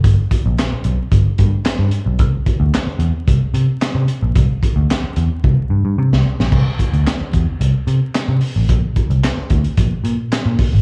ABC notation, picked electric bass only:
X:1
M:4/4
L:1/16
Q:1/4=111
K:C
V:1 name="Picked electric bass" clef=bass
G,,, z2 _B,,, z2 =B,,, z G,,, z G,, z2 G,, z B,,, | C,, z2 D,, z2 E,, z C,, z C, z2 C, z _B,,, | C,, z2 D,, z2 E,, z C,, z G,, G,, C, C,, z _B,,, | C,, z2 D,, z2 E,, z C,, z C, z2 C, z A,,, |
_B,,, z2 C,, z2 D,, z B,,, z _B,, z2 B,, z _A,,, |]